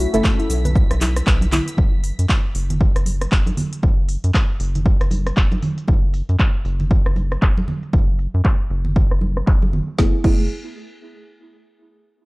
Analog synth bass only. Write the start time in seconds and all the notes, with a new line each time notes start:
0.14 F#1
0.50 B1
0.91 B1
1.27 B1
1.78 F#1
2.19 F#2
2.55 F#1
2.96 F#1
3.32 F#1
3.83 F#1
4.24 F#2
4.60 F#1
5.01 F#1
5.37 F#1
5.88 F#1
6.29 F#2
6.65 F#1
7.06 F#1
7.42 F#1
7.93 F#1
8.34 F#2
8.70 F#1
9.11 F#1
9.47 F#1
9.99 F#1
10.24 F#1